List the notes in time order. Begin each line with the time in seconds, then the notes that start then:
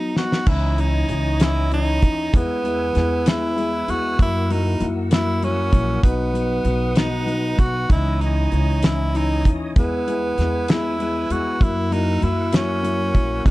Already playing: F#3 B3 D#4
0.14 F#3 B3 D#4 F#4, snare
0.32 snare
0.46 C#2 E3 C#4 D#4 E4 C#5 D#5 D#6, kick, crash
0.77 E3 C#4 D#4, closed hi-hat
1.09 C#2 E3 C#4 D#4, closed hi-hat
1.40 E3 C#4 D#4 E4, snare, closed hi-hat
1.71 E3 C#4 D#4, closed hi-hat
2.02 D#2 E3 C#4 D#4, kick, closed hi-hat
2.33 E2 G#3 B3 E4 B4 G#5 E6, kick, closed hi-hat
2.64 G#3 B3 E4, closed hi-hat
2.94 E2 G#3 B3 E4, snare, closed hi-hat
3.26 G#3 B3 E4, snare, closed hi-hat
3.56 G#3 B3 E4, closed hi-hat
3.88 E2 G#3 B3 E4 F#4, closed hi-hat
4.19 F#2 F#3 A#3 E4 A#4 F#5, kick, closed hi-hat
4.50 F#3 A#3 D#4 E4, closed hi-hat
4.80 F#2 F#3 A#3 E4, closed hi-hat
5.11 F#3 A#3 E4, snare, closed hi-hat
5.42 F#3 A#3 C#4 E4, closed hi-hat
5.72 A#1 F#3 A#3 E4, kick, closed hi-hat
6.03 B1 F#3 B3 D#4 B4 D#6, kick, closed hi-hat
6.33 F#3 B3 D#4, closed hi-hat
6.64 B1 F#3 B3 D#4, closed hi-hat
6.96 F#3 B3 D#4, snare, closed hi-hat
7.26 F#3 B3 D#4, closed hi-hat
7.57 B1 F#3 B3 F#4, kick, closed hi-hat
7.89 C#2 E3 C#4 D#4 E4 C#5 D#5, kick, closed hi-hat
8.21 E3 C#4 D#4, closed hi-hat
8.51 C#2 E3 C#4 D#4, closed hi-hat
8.83 E3 C#4 D#4 E4, snare, closed hi-hat
9.14 E3 C#4 D#4, closed hi-hat
9.45 D#2 E3 C#4 D#4, kick, closed hi-hat
9.76 E2 G#3 B3 E4 B4 G#5 E6, kick, closed hi-hat
10.07 G#3 B3 E4, closed hi-hat
10.38 E2 G#3 B3 E4, snare, closed hi-hat
10.68 G#3 B3 E4, snare, closed hi-hat
10.99 G#3 B3 E4, closed hi-hat
11.30 E2 G#3 B3 E4 F#4, closed hi-hat
11.60 F#2 F#3 A#3 E4 A#4 F#5, kick, closed hi-hat
11.91 F#3 A#3 D#4 E4, closed hi-hat
12.21 F#2 F#3 A#3 E4, closed hi-hat
12.53 F#3 A#3 C#4 E4, snare, closed hi-hat
12.83 F#3 A#3 E4, closed hi-hat
13.14 A#1 F#3 A#3 E4, kick, closed hi-hat
13.45 B1 F#3 B3 D#4 B4 D#6, kick, closed hi-hat